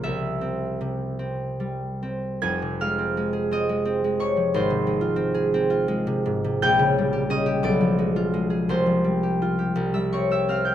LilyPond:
<<
  \new Staff \with { instrumentName = "Harp" } { \time 6/8 \key f \minor \tempo 4. = 57 e''2. | <aes'' aes'''>8 <f'' f'''>4 <ees'' ees'''>4 <des'' des'''>8 | <c'' c'''>2. | <g'' g'''>4 <ees'' ees'''>8 <d'' d'''>4. |
<c'' c'''>4.~ <c'' c'''>16 <e'' e'''>16 <des'' des'''>16 <e'' e'''>16 <f'' f'''>16 <g'' g'''>16 | }
  \new Staff \with { instrumentName = "Harp" } { \clef bass \time 6/8 \key f \minor c,8 c'8 c8 c'8 g8 c'8 | <f,, f,>16 c16 aes16 c'16 aes16 aes'16 c'16 aes16 c'16 aes16 c16 f16 | aes,,16 c16 aes16 f'16 c'16 aes'16 c'16 f'16 aes16 c16 aes,16 c16 | bes,,16 des16 g16 g'16 des'16 g'16 b,,16 f16 gis16 f'16 gis16 gis'16 |
c,16 f16 g16 g'16 f'16 g'16 c,16 g16 c'16 g'16 c'16 g'16 | }
>>